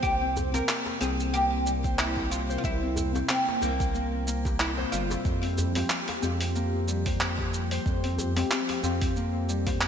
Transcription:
Already playing: A#3 C4 G4 C5
0.03 C2 C3 A#3 G4, kick, shaker
0.21 C4
0.36 djembe bass, shaker
0.54 C4 A#4, djembe slap, djembe tone, shaker
0.69 clap, shaker
0.86 djembe slap
1.00 C2 C4 G#4, shaker
1.20 shaker
1.33 A#3 G4, shaker
1.66 G3, shaker
1.84 C5, kick, shaker
1.99 E4, clap, shaker
2.17 G4, kick, djembe tone
2.31 F4, shaker
2.49 C5, shaker
2.58 F4
2.64 C2 E4, kick, shaker
2.82 C4
2.96 djembe bass, shaker
3.15 C4, djembe slap, djembe tone, shaker
3.29 C4, clap, shaker
3.48 djembe slap
3.61 C2 A#3 C4, djembe tone, shaker
3.80 kick, shaker
3.94 A#3, shaker
4.27 A#3, shaker
4.45 G4, kick, djembe slap, djembe tone, shaker
4.60 E4, clap, shaker
4.78 C5, djembe slap, djembe tone
4.92 G1 G3 F4, shaker
5.10 E4, djembe slap, djembe tone, shaker
5.24 F2 F3 C4 G4, kick, shaker
5.43 C4, open hi-hat
5.58 djembe bass, shaker
5.75 G#3 C4 F4 G4, open hi-hat, djembe slap, djembe tone, shaker
5.90 C4, clap, shaker
6.08 open hi-hat, djembe slap
6.22 F2 G#3 C4 F4 G4, shaker
6.41 open hi-hat, shaker
6.55 A#3, shaker
6.88 G3, shaker
7.06 C5, kick, open hi-hat, shaker
7.20 clap, shaker
7.39 G4, kick, djembe tone
7.53 shaker
7.71 C5, open hi-hat, shaker
7.86 F2, kick, shaker
8.04 C4, open hi-hat
8.18 djembe bass, shaker
8.36 G#3 C4 F4 G4, open hi-hat, djembe slap, shaker
8.51 C4, clap, shaker
8.69 open hi-hat, djembe slap
8.83 F2 C4 F4 G4, djembe tone, shaker
9.01 kick, open hi-hat, shaker
9.16 A#3, shaker
9.49 G3, shaker
9.66 C5, kick, open hi-hat, djembe slap, djembe tone, shaker
9.81 clap, shaker

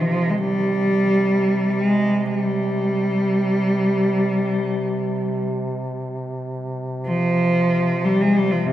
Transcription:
Already playing: C3
0.01 F3
0.30 G#3
0.38 G3
1.70 G3
1.83 G#3
2.26 G#3
2.38 G3
7.07 F3
8.05 G3
8.21 G#3
8.37 G3
8.51 F3
8.66 C3

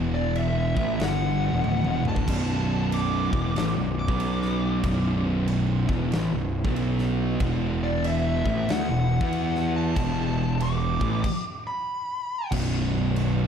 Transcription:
Already playing: E1 E2 B2 E3 B3 F#4
0.14 D5
0.35 E5, crash
0.76 A1 A2 E3 A3, kick
0.99 G1 G2 D3 G3 F#5, snare, crash
1.51 E1 E2 B2
1.63 D1 D2 A2, high tom
1.83 E1 E2 B2, mid tom
2.03 D1 D2 A2 D3, mid tom
2.08 A5
2.16 kick
2.26 B0 B1 F#2 B2 C#4, kick, crash
2.92 D6, crash
3.32 E1 E2 B2 E3, kick
3.55 A1 A2 E3, snare, crash
3.77 B0 B1 F#2
3.99 D6
4.08 B1 B2 F#3 B3, kick
4.20 crash
4.42 snare
4.84 B0 B1 F#2 B2 E4, kick, crash
5.48 crash
5.89 E1 E2 B2 E3, kick
6.11 A1 A2 E3, snare, crash
6.33 B0 B1 F#2
6.64 B1 B2 F#3 B3, kick
6.76 crash
6.99 snare
7.40 E1 E2 B2 E3 F#4, kick, crash
7.83 D5
8.04 E5, crash
8.45 A1 A2 E3 A3, kick
8.68 D2 D3 A3 F#5, snare, crash
8.89 E1 E2 B2
9.21 E2 E3 B3 E4, kick
9.33 crash
9.55 snare
9.76 A5
9.96 E1 E2 B2 E3 G4, kick, crash
10.60 D6, crash
11.00 A1 A2 E3 A3, kick
11.24 kick, crash
11.67 B5
12.52 B0 B1 F#2 B2 B3 F#4 C#5, kick, crash
13.16 crash

